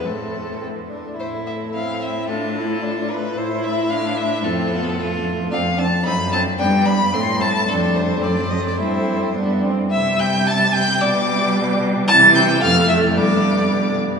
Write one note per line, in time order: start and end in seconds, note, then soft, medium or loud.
0.05 0.99 A2 soft
0.05 0.99 A3 soft
0.05 0.56 C4 soft
0.05 0.63 A4 soft
0.61 0.69 C4 soft
0.89 1.17 D4 soft
1.17 3.34 A2 soft
1.17 1.77 A3 soft
1.17 1.70 E4 soft
1.17 1.28 C5 medium
1.47 1.55 E5 medium
1.73 2.31 C4 soft
1.73 2.30 E4 soft
1.73 2.04 F5 medium
2.02 2.28 E5 medium
2.28 2.59 D4 soft
2.28 2.84 F4 soft
2.28 3.12 A4 medium
2.57 2.85 E4 medium
2.83 3.09 D4 medium
2.83 3.37 F4 medium
3.10 3.18 D4 medium
3.10 3.39 B4 medium
3.37 4.47 A2 medium
3.37 4.46 E4 medium
3.37 3.90 E4 medium
3.37 3.65 C5 medium
3.64 3.92 E5 medium
3.90 4.46 D4 medium
3.90 4.18 F5 medium
4.17 4.45 E5 medium
4.44 5.52 F2 medium
4.44 4.73 C4 medium
4.44 4.97 F4 medium
4.44 5.25 A4 medium
4.71 5.00 B3 medium
4.98 5.51 A3 medium
4.98 5.50 F4 medium
5.51 5.99 F2 medium
5.51 5.60 C4 medium
5.51 5.59 D4 medium
5.51 5.80 F5 medium
5.78 5.87 C4 medium
5.78 5.86 D4 medium
5.78 6.05 A5 loud
6.05 6.53 F#2 medium
6.05 6.14 C4 medium
6.05 6.13 D#4 medium
6.05 6.32 B5 loud
6.32 6.40 C4 medium
6.32 6.40 D#4 medium
6.32 6.40 A5 loud
6.59 7.07 G2 medium
6.59 6.67 B3 medium
6.59 6.67 D4 medium
6.59 6.87 G5 loud
6.86 6.95 B3 medium
6.86 6.94 D4 medium
6.86 7.15 B5 loud
7.13 7.61 A2 medium
7.13 7.21 A3 medium
7.13 7.21 C4 medium
7.13 7.42 C6 loud
7.40 7.48 A3 medium
7.40 7.48 C4 medium
7.40 7.70 A5 loud
7.67 8.24 F2 medium
7.67 8.19 A3 medium
7.67 8.23 D4 medium
7.67 7.97 A4 medium
7.96 8.24 C5 medium
8.22 8.81 F#2 medium
8.22 8.81 A3 medium
8.22 8.80 C4 medium
8.22 8.52 D5 medium
8.51 8.65 D#5 medium
8.66 8.79 D5 medium
8.79 9.36 G2 medium
8.79 9.35 C4 medium
8.79 9.35 E4 medium
8.79 9.35 C5 medium
9.35 9.71 G2 medium
9.35 9.65 B3 medium
9.35 9.71 D4 medium
9.64 9.91 C4 medium
9.92 11.03 C3 medium
9.92 10.97 G3 medium
9.92 10.22 E5 medium
9.92 10.21 E6 medium
10.20 10.49 G5 medium
10.20 10.50 G6 medium
10.47 10.75 A5 medium
10.47 10.74 A6 loud
10.74 11.03 G5 medium
10.74 11.03 G6 loud
11.01 12.08 B2 medium
11.01 12.06 G3 medium
11.01 11.82 D5 medium
11.01 11.82 D6 loud
12.08 12.64 C3 loud
12.08 12.61 E3 medium
12.08 12.16 A5 loud
12.08 12.37 A6 loud
12.35 12.63 G5 medium
12.35 12.62 G6 loud
12.61 13.18 F2 medium
12.61 13.18 A3 medium
12.61 12.88 F5 loud
12.61 12.89 F6 loud
12.88 12.96 E5 medium
12.88 12.97 E6 loud
13.16 14.06 G2 medium
13.16 14.06 B3 medium
13.16 13.97 D5 medium
13.16 13.97 D6 medium